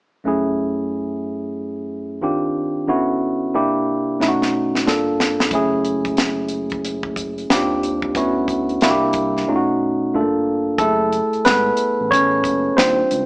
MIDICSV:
0, 0, Header, 1, 4, 480
1, 0, Start_track
1, 0, Tempo, 659341
1, 173, Time_signature, 4, 2, 24, 8
1, 9651, End_track
2, 0, Start_track
2, 0, Title_t, "Tine electric piano"
2, 0, Program_c, 0, 4
2, 175, Note_on_c, 0, 42, 59
2, 183, Note_on_c, 0, 57, 53
2, 188, Note_on_c, 0, 61, 49
2, 197, Note_on_c, 0, 64, 53
2, 201, Note_on_c, 0, 68, 61
2, 301, Control_c, 0, 64, 127
2, 1585, Note_off_c, 0, 42, 0
2, 1590, Note_off_c, 0, 57, 0
2, 1592, Note_off_c, 0, 61, 0
2, 1597, Note_off_c, 0, 64, 0
2, 1599, Note_off_c, 0, 68, 0
2, 1613, Note_on_c, 0, 51, 52
2, 1618, Note_on_c, 0, 60, 47
2, 1620, Note_on_c, 0, 62, 47
2, 1622, Note_on_c, 0, 65, 53
2, 1623, Control_c, 0, 64, 0
2, 1628, Note_on_c, 0, 67, 55
2, 1764, Control_c, 0, 64, 127
2, 2092, Note_on_c, 0, 50, 58
2, 2093, Note_off_c, 0, 51, 0
2, 2095, Note_off_c, 0, 60, 0
2, 2096, Note_off_c, 0, 62, 0
2, 2097, Note_off_c, 0, 65, 0
2, 2098, Note_on_c, 0, 59, 54
2, 2100, Note_on_c, 0, 61, 52
2, 2101, Note_off_c, 0, 67, 0
2, 2104, Control_c, 0, 64, 0
2, 2104, Note_on_c, 0, 64, 57
2, 2106, Note_on_c, 0, 66, 66
2, 2220, Control_c, 0, 64, 127
2, 2573, Note_off_c, 0, 50, 0
2, 2575, Note_off_c, 0, 59, 0
2, 2576, Note_off_c, 0, 64, 0
2, 2577, Note_off_c, 0, 61, 0
2, 2577, Note_on_c, 0, 48, 62
2, 2580, Note_off_c, 0, 66, 0
2, 2580, Note_on_c, 0, 58, 54
2, 2581, Note_on_c, 0, 62, 55
2, 2582, Control_c, 0, 64, 0
2, 2585, Note_on_c, 0, 64, 51
2, 2588, Note_on_c, 0, 67, 66
2, 2693, Control_c, 0, 64, 127
2, 3055, Note_off_c, 0, 48, 0
2, 3057, Note_off_c, 0, 58, 0
2, 3057, Note_off_c, 0, 62, 0
2, 3057, Note_on_c, 0, 47, 57
2, 3058, Note_on_c, 0, 57, 54
2, 3059, Note_off_c, 0, 64, 0
2, 3060, Note_on_c, 0, 61, 52
2, 3061, Note_off_c, 0, 67, 0
2, 3063, Control_c, 0, 64, 0
2, 3064, Note_on_c, 0, 63, 51
2, 3069, Note_on_c, 0, 64, 51
2, 3117, Note_on_c, 0, 66, 64
2, 3121, Note_off_c, 0, 64, 0
2, 3200, Control_c, 0, 64, 127
2, 3534, Note_on_c, 0, 43, 59
2, 3535, Note_off_c, 0, 47, 0
2, 3536, Note_off_c, 0, 57, 0
2, 3537, Note_off_c, 0, 61, 0
2, 3537, Note_on_c, 0, 58, 52
2, 3539, Note_off_c, 0, 63, 0
2, 3541, Note_on_c, 0, 62, 50
2, 3542, Control_c, 0, 64, 0
2, 3544, Note_on_c, 0, 65, 50
2, 3547, Note_on_c, 0, 69, 62
2, 3565, Note_off_c, 0, 66, 0
2, 3652, Control_c, 0, 64, 127
2, 4013, Note_on_c, 0, 57, 57
2, 4014, Note_off_c, 0, 43, 0
2, 4015, Note_off_c, 0, 58, 0
2, 4017, Note_off_c, 0, 62, 0
2, 4019, Note_off_c, 0, 65, 0
2, 4020, Note_off_c, 0, 69, 0
2, 4023, Control_c, 0, 64, 0
2, 4024, Note_on_c, 0, 61, 57
2, 4030, Note_on_c, 0, 64, 57
2, 4041, Note_on_c, 0, 68, 73
2, 4145, Control_c, 0, 64, 127
2, 5424, Note_off_c, 0, 57, 0
2, 5430, Note_off_c, 0, 61, 0
2, 5433, Note_off_c, 0, 64, 0
2, 5439, Note_off_c, 0, 68, 0
2, 5460, Note_on_c, 0, 60, 57
2, 5463, Control_c, 0, 64, 0
2, 5465, Note_on_c, 0, 62, 55
2, 5469, Note_on_c, 0, 65, 56
2, 5473, Note_on_c, 0, 67, 66
2, 5576, Control_c, 0, 64, 127
2, 5937, Note_off_c, 0, 60, 0
2, 5937, Note_on_c, 0, 59, 65
2, 5939, Note_off_c, 0, 62, 0
2, 5940, Note_on_c, 0, 61, 59
2, 5941, Note_off_c, 0, 65, 0
2, 5943, Note_off_c, 0, 67, 0
2, 5943, Control_c, 0, 64, 0
2, 5945, Note_on_c, 0, 64, 59
2, 5949, Note_on_c, 0, 66, 66
2, 6059, Control_c, 0, 64, 127
2, 6415, Note_off_c, 0, 59, 0
2, 6417, Note_off_c, 0, 61, 0
2, 6419, Note_off_c, 0, 64, 0
2, 6421, Note_off_c, 0, 66, 0
2, 6421, Note_on_c, 0, 58, 64
2, 6423, Control_c, 0, 64, 0
2, 6423, Note_on_c, 0, 62, 57
2, 6429, Note_on_c, 0, 64, 61
2, 6433, Note_on_c, 0, 66, 57
2, 6479, Note_on_c, 0, 67, 72
2, 6483, Note_off_c, 0, 66, 0
2, 6547, Control_c, 0, 64, 127
2, 6897, Note_off_c, 0, 58, 0
2, 6897, Note_on_c, 0, 47, 57
2, 6898, Note_off_c, 0, 62, 0
2, 6899, Note_on_c, 0, 57, 49
2, 6901, Note_off_c, 0, 64, 0
2, 6902, Control_c, 0, 64, 0
2, 6905, Note_on_c, 0, 61, 55
2, 6906, Note_on_c, 0, 63, 57
2, 6910, Note_on_c, 0, 65, 53
2, 6926, Note_off_c, 0, 67, 0
2, 6958, Note_on_c, 0, 66, 66
2, 6961, Note_off_c, 0, 65, 0
2, 7027, Control_c, 0, 64, 127
2, 7372, Note_off_c, 0, 57, 0
2, 7375, Note_off_c, 0, 47, 0
2, 7379, Note_off_c, 0, 61, 0
2, 7380, Note_off_c, 0, 63, 0
2, 7380, Note_on_c, 0, 43, 57
2, 7381, Note_on_c, 0, 57, 46
2, 7383, Control_c, 0, 64, 0
2, 7387, Note_on_c, 0, 62, 49
2, 7388, Note_on_c, 0, 65, 53
2, 7393, Note_on_c, 0, 69, 60
2, 7406, Note_off_c, 0, 66, 0
2, 7430, Note_on_c, 0, 58, 55
2, 7437, Note_off_c, 0, 57, 0
2, 7498, Control_c, 0, 64, 127
2, 7842, Note_off_c, 0, 69, 0
2, 7851, Note_on_c, 0, 69, 77
2, 7857, Note_off_c, 0, 43, 0
2, 7858, Note_on_c, 0, 68, 46
2, 7860, Note_off_c, 0, 62, 0
2, 7861, Note_off_c, 0, 65, 0
2, 7863, Control_c, 0, 64, 0
2, 7865, Note_on_c, 0, 57, 65
2, 7865, Note_on_c, 0, 64, 50
2, 7882, Note_off_c, 0, 58, 0
2, 7990, Control_c, 0, 64, 127
2, 8312, Note_off_c, 0, 57, 0
2, 8335, Note_on_c, 0, 71, 87
2, 8347, Note_off_c, 0, 69, 0
2, 8352, Note_on_c, 0, 59, 64
2, 8547, Note_off_c, 0, 68, 0
2, 8550, Note_off_c, 0, 64, 0
2, 8785, Note_off_c, 0, 71, 0
2, 8794, Note_off_c, 0, 59, 0
2, 8814, Note_on_c, 0, 73, 85
2, 8830, Note_on_c, 0, 61, 69
2, 9273, Note_off_c, 0, 61, 0
2, 9295, Note_on_c, 0, 72, 75
2, 9298, Note_on_c, 0, 55, 44
2, 9300, Note_on_c, 0, 60, 66
2, 9302, Note_on_c, 0, 62, 43
2, 9303, Control_c, 0, 64, 0
2, 9308, Note_off_c, 0, 73, 0
2, 9308, Note_on_c, 0, 65, 49
2, 9453, Control_c, 0, 64, 127
2, 9638, Note_off_c, 0, 55, 0
2, 9641, Note_off_c, 0, 62, 0
2, 9643, Note_off_c, 0, 65, 0
2, 9651, Note_off_c, 0, 60, 0
2, 9651, Note_off_c, 0, 72, 0
2, 9651, End_track
3, 0, Start_track
3, 0, Title_t, "Analog synth bass"
3, 0, Program_c, 1, 38
3, 4022, Note_on_c, 1, 30, 75
3, 5428, Note_off_c, 1, 30, 0
3, 5477, Note_on_c, 1, 39, 79
3, 5922, Note_off_c, 1, 39, 0
3, 5943, Note_on_c, 1, 38, 73
3, 6394, Note_off_c, 1, 38, 0
3, 6430, Note_on_c, 1, 36, 75
3, 6878, Note_off_c, 1, 36, 0
3, 7859, Note_on_c, 1, 30, 88
3, 8164, Note_off_c, 1, 30, 0
3, 8260, Note_on_c, 1, 32, 44
3, 8292, Note_off_c, 1, 32, 0
3, 8350, Note_on_c, 1, 32, 84
3, 8532, Note_off_c, 1, 32, 0
3, 8739, Note_on_c, 1, 33, 89
3, 9065, Note_on_c, 1, 30, 89
3, 9075, Note_off_c, 1, 33, 0
3, 9249, Note_off_c, 1, 30, 0
3, 9310, Note_on_c, 1, 39, 91
3, 9492, Note_off_c, 1, 39, 0
3, 9549, Note_on_c, 1, 37, 78
3, 9651, Note_off_c, 1, 37, 0
3, 9651, End_track
4, 0, Start_track
4, 0, Title_t, "Drums"
4, 3068, Note_on_c, 9, 38, 44
4, 3141, Note_off_c, 9, 38, 0
4, 3220, Note_on_c, 9, 38, 45
4, 3292, Note_off_c, 9, 38, 0
4, 3461, Note_on_c, 9, 38, 56
4, 3534, Note_off_c, 9, 38, 0
4, 3549, Note_on_c, 9, 38, 66
4, 3622, Note_off_c, 9, 38, 0
4, 3786, Note_on_c, 9, 38, 73
4, 3859, Note_off_c, 9, 38, 0
4, 3933, Note_on_c, 9, 38, 74
4, 4006, Note_off_c, 9, 38, 0
4, 4011, Note_on_c, 9, 36, 87
4, 4013, Note_on_c, 9, 42, 59
4, 4084, Note_off_c, 9, 36, 0
4, 4086, Note_off_c, 9, 42, 0
4, 4256, Note_on_c, 9, 42, 46
4, 4329, Note_off_c, 9, 42, 0
4, 4404, Note_on_c, 9, 36, 67
4, 4407, Note_on_c, 9, 42, 28
4, 4477, Note_off_c, 9, 36, 0
4, 4480, Note_off_c, 9, 42, 0
4, 4492, Note_on_c, 9, 42, 56
4, 4501, Note_on_c, 9, 38, 86
4, 4565, Note_off_c, 9, 42, 0
4, 4574, Note_off_c, 9, 38, 0
4, 4721, Note_on_c, 9, 42, 51
4, 4794, Note_off_c, 9, 42, 0
4, 4876, Note_on_c, 9, 42, 25
4, 4891, Note_on_c, 9, 36, 75
4, 4949, Note_off_c, 9, 42, 0
4, 4964, Note_off_c, 9, 36, 0
4, 4984, Note_on_c, 9, 42, 65
4, 5057, Note_off_c, 9, 42, 0
4, 5119, Note_on_c, 9, 36, 74
4, 5192, Note_off_c, 9, 36, 0
4, 5214, Note_on_c, 9, 36, 66
4, 5220, Note_on_c, 9, 42, 56
4, 5287, Note_off_c, 9, 36, 0
4, 5293, Note_off_c, 9, 42, 0
4, 5372, Note_on_c, 9, 42, 29
4, 5445, Note_off_c, 9, 42, 0
4, 5462, Note_on_c, 9, 38, 95
4, 5476, Note_on_c, 9, 42, 61
4, 5535, Note_off_c, 9, 38, 0
4, 5549, Note_off_c, 9, 42, 0
4, 5703, Note_on_c, 9, 42, 52
4, 5775, Note_off_c, 9, 42, 0
4, 5841, Note_on_c, 9, 36, 69
4, 5914, Note_off_c, 9, 36, 0
4, 5933, Note_on_c, 9, 36, 82
4, 5937, Note_on_c, 9, 42, 58
4, 6005, Note_off_c, 9, 36, 0
4, 6010, Note_off_c, 9, 42, 0
4, 6173, Note_on_c, 9, 36, 70
4, 6180, Note_on_c, 9, 42, 49
4, 6246, Note_off_c, 9, 36, 0
4, 6253, Note_off_c, 9, 42, 0
4, 6328, Note_on_c, 9, 42, 26
4, 6401, Note_off_c, 9, 42, 0
4, 6413, Note_on_c, 9, 42, 54
4, 6422, Note_on_c, 9, 38, 89
4, 6486, Note_off_c, 9, 42, 0
4, 6495, Note_off_c, 9, 38, 0
4, 6647, Note_on_c, 9, 42, 57
4, 6653, Note_on_c, 9, 36, 74
4, 6719, Note_off_c, 9, 42, 0
4, 6726, Note_off_c, 9, 36, 0
4, 6819, Note_on_c, 9, 38, 29
4, 6892, Note_off_c, 9, 38, 0
4, 7851, Note_on_c, 9, 36, 93
4, 7855, Note_on_c, 9, 42, 56
4, 7924, Note_off_c, 9, 36, 0
4, 7927, Note_off_c, 9, 42, 0
4, 8099, Note_on_c, 9, 42, 49
4, 8172, Note_off_c, 9, 42, 0
4, 8250, Note_on_c, 9, 42, 30
4, 8322, Note_off_c, 9, 42, 0
4, 8335, Note_on_c, 9, 42, 56
4, 8344, Note_on_c, 9, 38, 93
4, 8408, Note_off_c, 9, 42, 0
4, 8417, Note_off_c, 9, 38, 0
4, 8567, Note_on_c, 9, 42, 59
4, 8640, Note_off_c, 9, 42, 0
4, 8822, Note_on_c, 9, 36, 72
4, 8833, Note_on_c, 9, 42, 70
4, 8895, Note_off_c, 9, 36, 0
4, 8906, Note_off_c, 9, 42, 0
4, 9055, Note_on_c, 9, 36, 69
4, 9062, Note_on_c, 9, 42, 56
4, 9128, Note_off_c, 9, 36, 0
4, 9135, Note_off_c, 9, 42, 0
4, 9304, Note_on_c, 9, 38, 98
4, 9319, Note_on_c, 9, 42, 72
4, 9377, Note_off_c, 9, 38, 0
4, 9392, Note_off_c, 9, 42, 0
4, 9543, Note_on_c, 9, 42, 58
4, 9616, Note_off_c, 9, 42, 0
4, 9651, End_track
0, 0, End_of_file